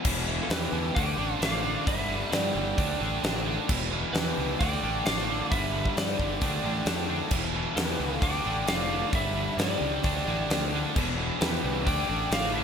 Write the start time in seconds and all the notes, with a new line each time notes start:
0.05 E1 E2 B2 E3, kick, crash
0.28 E2 B2 E3
0.42 F4 A4
0.50 E2 B2 E3 G4 B4, snare, open hi-hat
0.71 E2 B2 E3
0.94 D2 D3 A3 D4 G5, kick, open hi-hat
0.98 D5
1.17 A1 D3 A3 D4
1.39 A1 D3 A3 D4 D5 F5, snare, open hi-hat
1.63 D3 A3 D4
1.86 G1 G2 D3 G3 B4 E5, kick, open hi-hat
2.07 G2 D3 G3
2.31 G2 D3 G3 G4 D5, snare, open hi-hat
2.53 G1 G2 D3 G3
2.78 D2 D3 A3 D4, kick, open hi-hat
3.00 A1 D3 A3 D4
3.23 A1 D3 A3 D4, snare, open hi-hat
3.46 D3 A3 D4
3.69 E1 E2 B2 E3, kick, crash
3.92 E2 B2 E3
4.13 E2 B2 E3 G4 B4, snare, open hi-hat
4.38 C#2 E2 B2 E3
4.59 D2 D3 A3 D4 D5 G5, kick, open hi-hat
4.83 A1 D3 A3 D4
5.03 A1 D3 A3 D4 D5 F5, snare, open hi-hat
5.29 D3 A3 D4
5.50 G1 G2 D3 G3 B4 E5, kick, open hi-hat
5.74 G2 D3 G3
5.86 kick
5.97 G2 D3 G3 G4 D5, snare, open hi-hat
6.19 G1 G2 D3 G3, kick
6.41 D2 D3 A3 D4, kick, open hi-hat
6.64 A1 D3 A3 D4
6.86 F2 D3 A3 D4, snare, open hi-hat
7.09 D3 A3 D4
7.31 E1 E2 B2 E3, kick, crash
7.54 E2 B2 E3
7.75 E2 B2 E3 G4 B4, snare, open hi-hat
7.98 C#2 E2 B2 E3
8.20 D2 D3 A3 D4 D5 G5, kick, open hi-hat
8.44 A1 D3 A3 D4
8.66 F1 D3 A3 D4 D5 F5, snare, open hi-hat
8.88 D3 A3 D4
9.12 G1 G2 D3 G3 B4 E5, kick, open hi-hat
9.34 G2 D3 G3
9.56 G2 D3 G3 G4, snare, open hi-hat
9.62 D5
9.80 C#2 G2 D3 G3
10.03 D2 D3 A3 D4, kick, open hi-hat
10.25 A1 D3 A3 D4
10.49 D2 D3 A3 D4, snare, open hi-hat
10.72 D3 A3 D4
10.94 E1 E2 B2 E3, kick, crash
11.17 E2 B2 E3
11.38 E2 B2 E3 G4 B4, snare, open hi-hat
11.62 C2 E2 B2 E3
11.84 D2 D3 A3 D4 D5 G5, kick, open hi-hat
12.07 A1 D3 A3 D4
12.30 A1 D3 A3 D4 D5 F5, snare, open hi-hat
12.52 D3 A3 D4 B4 E5